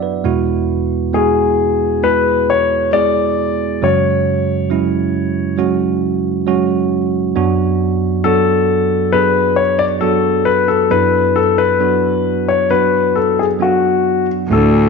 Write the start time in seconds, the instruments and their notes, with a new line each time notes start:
Already playing: tine electric piano F#2 F#3 B3 D4 F#4 D5 E5 F#5
0.03 tine electric piano B4
0.24 tine electric piano E2 B2 G#3 B3 E4 F#4
1.14 tine electric piano G#3 B3 E4 F#4, grand piano G#4
2.03 tine electric piano G#3 B3 E4 G#4, grand piano B4
2.50 grand piano C#5
2.93 tine electric piano G#3 B3 E4 G#4, grand piano D5
3.82 tine electric piano F#2 C#3 F#3 G#3 C#4 F#4, grand piano C#5
4.70 tine electric piano F#3 G#3 C#4 E4
5.58 tine electric piano F#3 G#3 C#4 F#4
6.47 tine electric piano F#3 G#3 C#4 F#4
7.35 tine electric piano F#2 F#3 B3 D4 F#4
8.24 tine electric piano F#3 B3 D4 F#4, grand piano A4
9.12 tine electric piano F#3 B3 D4 G#4, grand piano B4
9.56 grand piano C#5
9.79 grand piano D5
10.01 tine electric piano F#3 B3 D4 F#4, grand piano A4
10.45 grand piano B4
10.68 grand piano A4
10.90 tine electric piano F#2 F#3 B3 D4 E4, grand piano B4
11.36 grand piano A4
11.58 grand piano B4
11.80 tine electric piano F#3 B3 D4 F#4
12.48 grand piano C#5
12.70 tine electric piano F#3 B3 D4 F#4, grand piano B4
13.15 grand piano A4
13.39 grand piano G#4
13.59 tine electric piano F#3 B3 D4 F#4, grand piano F#4
14.50 cello section D2, tine electric piano A2 A3 D4 E4 F#4, grand piano A4